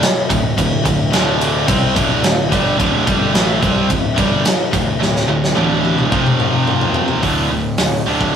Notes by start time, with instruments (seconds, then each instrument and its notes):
0.03 snare, ride
0.29 picked electric bass D1, distorted electric guitar D2 A2, kick, ride
0.57 picked electric bass D1, distorted electric guitar D2 A2, kick, ride
0.84 picked electric bass D1, distorted electric guitar D2 A2, kick, ride
1.10 picked electric bass D1, distorted electric guitar D2 A2 D3, snare, ride
1.41 ride
1.67 picked electric bass C2, distorted electric guitar C3 G3 C4, kick, ride
1.94 picked electric bass D1, distorted electric guitar D2 A2 D3, kick, ride
2.23 picked electric bass D1, distorted electric guitar D2 A2, snare, ride
2.49 picked electric bass G1, distorted electric guitar G2 D3 G3, kick, ride
2.78 picked electric bass D1, distorted electric guitar D2 A2 D3, kick, ride
3.05 picked electric bass G1, distorted electric guitar G2 D3 G3, kick, ride
3.32 picked electric bass A1, distorted electric guitar A2 E3 A3, snare, ride
3.59 picked electric bass C2, distorted electric guitar C3 G3 C4, kick
3.63 ride
3.87 picked electric bass D1, distorted electric guitar D2 A2, kick, ride
4.15 picked electric bass G1, distorted electric guitar G2 D3 G3, kick, ride
4.45 snare, ride
4.71 picked electric bass D1, distorted electric guitar D2 A2, kick, ride
4.99 picked electric bass D1, distorted electric guitar D2 A2, snare
5.16 snare
5.28 picked electric bass D1, distorted electric guitar D2 A2
5.44 snare
5.55 picked electric bass D1, distorted electric guitar D2 A2 D3, high tom
5.85 high tom
5.98 mid tom
6.09 picked electric bass F1, distorted electric guitar F2 C3 F3, kick
6.26 mid tom
6.40 mid tom
6.67 mid tom
6.81 floor tom
6.94 floor tom
7.08 floor tom
7.22 picked electric bass D1, distorted electric guitar D2 A2 D3, kick, open hi-hat
7.51 picked electric bass D1, distorted electric guitar D2 A2
7.78 picked electric bass D1, distorted electric guitar D2 A2, snare, open hi-hat
8.07 picked electric bass D1, distorted electric guitar D2 A2 D3
8.21 kick